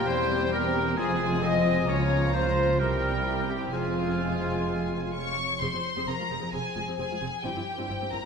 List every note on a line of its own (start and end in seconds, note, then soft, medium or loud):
0.00 0.28 G3 medium
0.00 0.51 G4 medium
0.00 0.93 G4 medium
0.00 0.93 G5 medium
0.06 0.95 E1 medium
0.06 0.96 E2 medium
0.06 0.99 E3 medium
0.06 0.81 G3 medium
0.06 1.84 C4 medium
0.06 1.85 C4 medium
0.06 0.51 E4 medium
0.06 0.51 C5 medium
0.06 0.51 C5 loud
0.06 0.51 C5 medium
0.30 0.74 G3 medium
0.52 0.99 G4 medium
0.52 0.98 G4 medium
0.52 0.96 A#4 loud
0.52 0.96 A#4 medium
0.52 0.98 A#4 medium
0.75 0.99 G3 medium
0.97 1.89 F1 medium
0.97 1.89 F2 medium
0.97 1.87 C3 medium
0.97 2.82 F3 medium
0.97 1.87 G#3 medium
0.97 1.43 F4 medium
0.97 1.87 F4 medium
0.97 2.76 F4 medium
0.97 1.42 G#4 medium
0.97 1.43 G#4 medium
0.97 1.42 G#4 medium
0.97 1.85 G#5 medium
1.20 1.65 F4 medium
1.42 1.87 C4 medium
1.42 1.91 C5 medium
1.42 1.90 D#5 loud
1.42 1.88 D#5 loud
1.66 2.33 F4 medium
1.88 2.78 C#2 medium
1.88 2.82 C#3 medium
1.88 2.76 C#3 medium
1.88 2.76 F3 medium
1.88 2.76 A#3 medium
1.88 2.35 C#4 medium
1.88 2.76 F4 medium
1.88 2.34 C#5 medium
1.88 2.33 C#5 medium
1.88 2.35 C#5 medium
1.88 2.76 A#5 medium
2.11 2.56 A#3 medium
2.33 2.81 F4 medium
2.33 2.82 F4 medium
2.33 2.80 C5 medium
2.33 2.79 C5 medium
2.79 3.73 C2 medium
2.79 3.75 C3 medium
2.79 3.71 C3 medium
2.79 3.73 G3 medium
2.79 5.37 C4 medium
2.79 3.71 C4 medium
2.79 3.69 E4 medium
2.79 3.73 E4 medium
2.79 3.12 G4 medium
2.79 3.48 A#4 medium
2.79 3.49 A#4 medium
2.79 3.48 A#4 medium
2.79 3.69 G5 medium
3.03 3.47 C4 medium
3.25 3.75 E4 medium
3.25 3.72 G4 medium
3.48 4.66 C4 medium
3.48 3.72 G4 medium
3.48 3.73 G4 medium
3.72 5.37 F1 medium
3.72 5.38 F2 medium
3.72 5.35 C3 medium
3.72 5.60 F3 medium
3.72 5.35 G#3 medium
3.72 5.35 C4 medium
3.72 5.35 F4 medium
3.72 5.38 F4 medium
3.72 5.11 F4 medium
3.72 5.34 G#4 medium
3.72 5.10 G#5 medium
3.96 4.43 F4 soft
4.44 4.90 F4 soft
4.68 6.52 C4 soft
4.91 5.37 F4 soft
5.14 7.46 G#4 soft
5.14 5.58 C#5 medium
5.14 5.58 C#6 medium
5.38 5.76 F4 soft
5.61 5.66 F1 medium
5.61 5.66 F2 medium
5.61 7.46 F3 soft
5.61 5.66 C4 medium
5.61 5.66 G#4 medium
5.61 6.07 C5 medium
5.61 6.07 C6 medium
5.73 5.78 F2 soft
5.73 5.77 C4 soft
5.73 6.66 F4 soft
5.73 5.78 G#4 soft
5.96 6.01 F2 medium
5.96 6.01 C4 medium
5.96 6.01 G#4 medium
6.07 6.12 F1 soft
6.07 6.12 F2 soft
6.07 6.12 C4 soft
6.07 6.12 G#4 soft
6.07 6.53 A#4 soft
6.07 6.36 F5 soft
6.07 6.53 A#5 medium
6.19 6.24 F2 soft
6.19 6.23 G#3 soft
6.19 6.23 F4 soft
6.30 6.35 F1 soft
6.30 6.35 F2 medium
6.30 6.34 C4 medium
6.30 6.34 G#4 soft
6.38 6.45 C4 soft
6.38 6.45 G#4 soft
6.38 6.97 F5 soft
6.42 6.47 F2 soft
6.53 6.58 F1 medium
6.53 6.58 F2 medium
6.53 6.57 C4 soft
6.53 7.57 C4 soft
6.53 6.57 G#4 soft
6.53 6.98 G#4 medium
6.53 6.98 G#5 medium
6.68 7.46 F4 soft
6.75 6.80 F1 soft
6.75 6.81 F2 soft
6.75 6.80 G#3 soft
6.75 6.80 F4 soft
6.83 6.91 C4 medium
6.83 7.88 C5 soft
6.87 6.92 F2 medium
6.87 6.92 G#4 medium
6.98 7.03 F1 soft
6.98 7.04 F2 soft
6.98 7.03 C4 soft
6.98 7.03 G#4 soft
6.98 7.44 G#4 medium
6.98 7.27 F5 soft
6.98 7.44 G#5 medium
7.10 7.15 F2 soft
7.10 7.15 G#3 soft
7.10 7.15 F4 soft
7.10 7.46 G#5 soft
7.21 7.26 F1 medium
7.21 7.26 F2 medium
7.21 7.26 C4 medium
7.21 7.26 G#4 soft
7.28 7.46 F5 soft
7.43 7.49 G1 medium
7.43 8.25 G2 soft
7.43 7.49 G2 medium
7.43 7.48 C4 medium
7.43 7.48 E4 medium
7.43 8.11 G4 medium
7.43 8.12 G5 medium
7.56 7.61 G2 soft
7.56 7.60 C4 soft
7.56 8.25 C4 soft
7.56 7.60 E4 soft
7.74 7.82 C4 soft
7.74 7.82 E4 medium
7.74 8.25 A#4 soft
7.79 7.83 G2 medium
7.89 7.94 G1 soft
7.89 7.94 G2 soft
7.89 7.93 C4 soft
7.89 7.94 E4 soft
7.89 8.18 C5 soft
8.00 8.06 G2 soft
8.00 8.05 A#3 soft
8.00 8.05 C4 soft
8.04 8.25 E5 soft
8.11 8.17 G1 medium
8.11 8.17 G2 medium
8.11 8.16 C4 soft
8.11 8.16 E4 medium
8.11 8.25 A#4 soft
8.11 8.25 A#5 medium
8.19 8.25 C5 soft